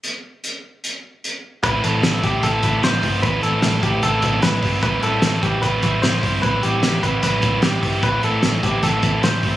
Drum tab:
HH |x-x-x-x-|xxxxxxxo|xxxxxxxo|xxxxxxxo|
SD |--------|--o---o-|--o---o-|--o---o-|
BD |--------|o--ooo-o|o--ooo-o|o--ooo-o|

HH |xxxxxxxo|xxxxxxxo|
SD |--o-o-o-|--o-o-o-|
BD |o--ooo-o|o--ooo-o|